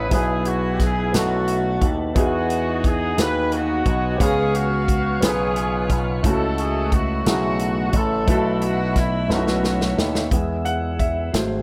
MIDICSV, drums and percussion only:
0, 0, Header, 1, 2, 480
1, 0, Start_track
1, 0, Key_signature, 4, "major"
1, 0, Tempo, 679502
1, 81, Time_signature, 6, 3, 24, 8
1, 8210, End_track
2, 0, Start_track
2, 0, Title_t, "Drums"
2, 78, Note_on_c, 9, 42, 70
2, 80, Note_on_c, 9, 36, 88
2, 149, Note_off_c, 9, 42, 0
2, 151, Note_off_c, 9, 36, 0
2, 319, Note_on_c, 9, 42, 49
2, 390, Note_off_c, 9, 42, 0
2, 562, Note_on_c, 9, 42, 45
2, 563, Note_on_c, 9, 36, 68
2, 563, Note_on_c, 9, 38, 32
2, 632, Note_off_c, 9, 42, 0
2, 634, Note_off_c, 9, 36, 0
2, 634, Note_off_c, 9, 38, 0
2, 805, Note_on_c, 9, 42, 86
2, 811, Note_on_c, 9, 38, 84
2, 876, Note_off_c, 9, 42, 0
2, 882, Note_off_c, 9, 38, 0
2, 1043, Note_on_c, 9, 42, 48
2, 1113, Note_off_c, 9, 42, 0
2, 1281, Note_on_c, 9, 42, 44
2, 1282, Note_on_c, 9, 36, 82
2, 1352, Note_off_c, 9, 42, 0
2, 1353, Note_off_c, 9, 36, 0
2, 1523, Note_on_c, 9, 42, 66
2, 1524, Note_on_c, 9, 36, 97
2, 1594, Note_off_c, 9, 42, 0
2, 1595, Note_off_c, 9, 36, 0
2, 1766, Note_on_c, 9, 42, 49
2, 1836, Note_off_c, 9, 42, 0
2, 2007, Note_on_c, 9, 36, 74
2, 2008, Note_on_c, 9, 42, 44
2, 2078, Note_off_c, 9, 36, 0
2, 2079, Note_off_c, 9, 42, 0
2, 2247, Note_on_c, 9, 42, 78
2, 2252, Note_on_c, 9, 38, 89
2, 2317, Note_off_c, 9, 42, 0
2, 2323, Note_off_c, 9, 38, 0
2, 2485, Note_on_c, 9, 42, 47
2, 2555, Note_off_c, 9, 42, 0
2, 2723, Note_on_c, 9, 42, 40
2, 2725, Note_on_c, 9, 36, 82
2, 2793, Note_off_c, 9, 42, 0
2, 2796, Note_off_c, 9, 36, 0
2, 2968, Note_on_c, 9, 36, 90
2, 2971, Note_on_c, 9, 42, 68
2, 3039, Note_off_c, 9, 36, 0
2, 3041, Note_off_c, 9, 42, 0
2, 3211, Note_on_c, 9, 42, 47
2, 3282, Note_off_c, 9, 42, 0
2, 3449, Note_on_c, 9, 36, 67
2, 3452, Note_on_c, 9, 42, 47
2, 3520, Note_off_c, 9, 36, 0
2, 3522, Note_off_c, 9, 42, 0
2, 3689, Note_on_c, 9, 42, 86
2, 3695, Note_on_c, 9, 38, 93
2, 3760, Note_off_c, 9, 42, 0
2, 3765, Note_off_c, 9, 38, 0
2, 3927, Note_on_c, 9, 42, 50
2, 3998, Note_off_c, 9, 42, 0
2, 4165, Note_on_c, 9, 42, 46
2, 4166, Note_on_c, 9, 36, 79
2, 4236, Note_off_c, 9, 36, 0
2, 4236, Note_off_c, 9, 42, 0
2, 4408, Note_on_c, 9, 36, 88
2, 4408, Note_on_c, 9, 42, 72
2, 4478, Note_off_c, 9, 36, 0
2, 4479, Note_off_c, 9, 42, 0
2, 4648, Note_on_c, 9, 42, 48
2, 4718, Note_off_c, 9, 42, 0
2, 4888, Note_on_c, 9, 42, 43
2, 4889, Note_on_c, 9, 36, 72
2, 4959, Note_off_c, 9, 36, 0
2, 4959, Note_off_c, 9, 42, 0
2, 5130, Note_on_c, 9, 42, 85
2, 5136, Note_on_c, 9, 38, 94
2, 5201, Note_off_c, 9, 42, 0
2, 5206, Note_off_c, 9, 38, 0
2, 5364, Note_on_c, 9, 42, 52
2, 5435, Note_off_c, 9, 42, 0
2, 5600, Note_on_c, 9, 42, 48
2, 5604, Note_on_c, 9, 36, 80
2, 5671, Note_off_c, 9, 42, 0
2, 5675, Note_off_c, 9, 36, 0
2, 5846, Note_on_c, 9, 36, 94
2, 5847, Note_on_c, 9, 42, 65
2, 5917, Note_off_c, 9, 36, 0
2, 5917, Note_off_c, 9, 42, 0
2, 6086, Note_on_c, 9, 42, 52
2, 6156, Note_off_c, 9, 42, 0
2, 6327, Note_on_c, 9, 42, 45
2, 6328, Note_on_c, 9, 36, 80
2, 6329, Note_on_c, 9, 38, 29
2, 6398, Note_off_c, 9, 42, 0
2, 6399, Note_off_c, 9, 36, 0
2, 6399, Note_off_c, 9, 38, 0
2, 6572, Note_on_c, 9, 38, 49
2, 6642, Note_off_c, 9, 38, 0
2, 6692, Note_on_c, 9, 38, 53
2, 6763, Note_off_c, 9, 38, 0
2, 6811, Note_on_c, 9, 38, 63
2, 6882, Note_off_c, 9, 38, 0
2, 6931, Note_on_c, 9, 38, 64
2, 7002, Note_off_c, 9, 38, 0
2, 7053, Note_on_c, 9, 38, 82
2, 7124, Note_off_c, 9, 38, 0
2, 7171, Note_on_c, 9, 38, 81
2, 7242, Note_off_c, 9, 38, 0
2, 7286, Note_on_c, 9, 36, 83
2, 7287, Note_on_c, 9, 42, 66
2, 7356, Note_off_c, 9, 36, 0
2, 7357, Note_off_c, 9, 42, 0
2, 7526, Note_on_c, 9, 42, 45
2, 7597, Note_off_c, 9, 42, 0
2, 7767, Note_on_c, 9, 36, 64
2, 7768, Note_on_c, 9, 42, 40
2, 7837, Note_off_c, 9, 36, 0
2, 7838, Note_off_c, 9, 42, 0
2, 8010, Note_on_c, 9, 42, 78
2, 8015, Note_on_c, 9, 38, 87
2, 8080, Note_off_c, 9, 42, 0
2, 8086, Note_off_c, 9, 38, 0
2, 8210, End_track
0, 0, End_of_file